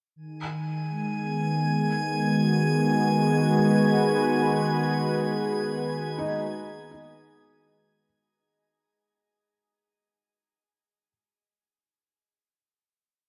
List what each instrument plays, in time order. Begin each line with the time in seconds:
0.16 analog synth pad D#3, synth drone G#3 G#4, synth texture G#5 G#6
0.89 analog synth pad G#3
1.21 analog synth pad B3
2.28 analog synth pad F#4
3.31 analog synth pad B4
6.18 felt piano D#4
6.91 felt piano D#4